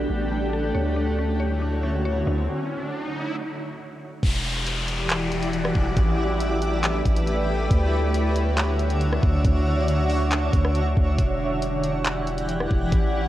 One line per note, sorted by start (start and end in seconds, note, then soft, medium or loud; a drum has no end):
0.00 2.45 A3 medium
0.00 0.72 D4 medium
0.00 0.75 D4 medium
0.00 0.72 G4 medium
0.00 0.52 A4 loud
0.10 0.72 A1 loud
0.31 0.75 A3 medium
0.53 0.75 A4 loud
0.75 2.23 D2 loud
0.75 2.47 D3 medium
0.75 2.47 E4 medium
0.75 2.47 F#4 medium
0.75 1.39 C#5 loud
0.75 2.47 C#5 medium
0.75 riser medium
0.96 1.61 D4 medium
1.19 1.82 C#4 medium
1.40 2.04 C#5 medium
1.62 2.26 D4 medium
1.83 3.14 C#4 medium
2.05 3.36 C#5 loud
2.27 2.48 D2 loud
2.27 3.58 D4 medium
4.23 5.71 E1 loud
4.23 5.95 E3 medium
4.23 7.67 E4 medium
4.23 5.95 F#4 medium
4.23 5.95 G4 medium
4.23 7.67 D5 medium
4.23 kick loud
4.23 closed hi-hat medium
4.23 crash medium
4.23 downlifter medium
4.67 closed hi-hat medium
4.88 closed hi-hat medium
5.10 clap loud
5.10 closed hi-hat medium
5.32 closed hi-hat medium
5.42 closed hi-hat medium
5.53 closed hi-hat medium
5.65 cross-stick loud
5.75 5.96 E1 loud
5.75 kick loud
5.97 7.01 A1 loud
5.97 7.69 A3 medium
5.97 7.69 G4 medium
5.97 7.69 B4 medium
5.97 kick loud
5.97 closed hi-hat medium
6.40 closed hi-hat medium
6.62 closed hi-hat medium
6.83 clap loud
6.83 closed hi-hat medium
7.05 7.68 A1 loud
7.05 kick medium
7.05 closed hi-hat medium
7.16 closed hi-hat medium
7.27 closed hi-hat medium
7.71 9.19 D2 loud
7.71 11.15 D3 medium
7.71 11.15 D4 medium
7.71 11.15 F#4 medium
7.71 11.15 C#5 medium
7.71 11.15 E5 medium
7.71 kick loud
7.71 closed hi-hat medium
8.14 closed hi-hat medium
8.36 closed hi-hat medium
8.57 clap loud
8.57 closed hi-hat medium
8.79 closed hi-hat medium
8.90 closed hi-hat medium
9.01 closed hi-hat medium
9.13 cross-stick medium
9.23 9.44 D2 loud
9.23 kick loud
9.44 10.49 D2 loud
9.44 kick loud
9.44 closed hi-hat medium
9.88 closed hi-hat medium
10.10 open hi-hat medium
10.31 clap loud
10.31 closed hi-hat medium
10.53 10.95 D2 loud
10.53 kick medium
10.53 closed hi-hat medium
10.65 cross-stick medium
10.75 closed hi-hat medium
10.97 11.18 D2 loud
10.97 kick loud
11.18 12.67 E1 loud
11.18 12.91 E3 medium
11.18 13.28 E4 medium
11.18 12.91 G4 medium
11.18 13.28 D5 medium
11.18 12.91 F#5 medium
11.18 kick loud
11.18 closed hi-hat medium
11.62 closed hi-hat medium
11.84 closed hi-hat medium
12.05 clap loud
12.05 closed hi-hat medium
12.27 closed hi-hat medium
12.38 closed hi-hat medium
12.49 closed hi-hat medium
12.60 cross-stick loud
12.71 12.92 E1 loud
12.71 kick loud
12.92 13.28 A1 loud
12.92 kick loud
12.92 closed hi-hat medium